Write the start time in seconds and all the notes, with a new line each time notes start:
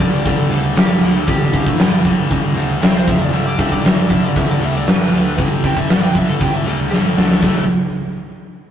Already playing: D5
0.00 G1 G2 D3 G3, kick, closed hi-hat
0.25 G1 G2 D3 G3, kick, closed hi-hat
0.50 D2 G2 D3 G3 A4, closed hi-hat
0.76 G1 G2 D3 G3 G4, snare, closed hi-hat
1.02 D2 G2 D3 G3 E4, closed hi-hat
1.27 G1 G2 D3 G3 G4, kick, closed hi-hat
1.53 G2 D3 G3, kick, closed hi-hat
1.66 kick
1.79 G1 G2 D3 G3, snare, closed hi-hat
2.03 G1 G2 D3 G3, kick, closed hi-hat
2.30 G1 G2 D3 G3, kick, closed hi-hat
2.55 D2 G2 D3 G3, closed hi-hat
2.81 C2 C3 G3 C4 E5, snare, closed hi-hat
2.96 C5
3.06 F1 F2 C3 F3 E5, kick, closed hi-hat
3.21 D5
3.32 G1 G2 D3 G3 E5, closed hi-hat
3.47 D5
3.58 G2 D3 G3 E5, kick, closed hi-hat
3.72 D5, kick
3.83 G1 G2 D3 G3 E5, snare, closed hi-hat
3.98 D5
4.09 G1 G2 D3 G3 E5, kick, closed hi-hat
4.25 D5
4.36 G1 G2 D3 G3 E5, kick, closed hi-hat
4.50 D5
4.61 D2 G2 D3 G3 E5, closed hi-hat
4.76 D5
4.87 G1 G2 D3 G3 B4, snare, closed hi-hat
5.12 D2 G2 D3 G3, closed hi-hat
5.38 G1 G2 D3 G3, kick, closed hi-hat
5.64 G2 D3 G3 G5, kick, closed hi-hat
5.77 E5, kick
5.89 G1 G2 D3 G3 A4, snare, closed hi-hat
6.04 G5
6.14 G1 G2 D3 G3 E5, kick, closed hi-hat
6.28 A4
6.40 G1 G2 D3 G3 G5, kick, closed hi-hat
6.54 E5
6.66 D2 G2 D3 G3 A4, closed hi-hat
6.90 G1 G2 D3 G3 A4, snare
7.17 D2 D3 A3 D4, snare
7.31 snare
7.42 A1 A2 E3 A3, kick, snare, ride bell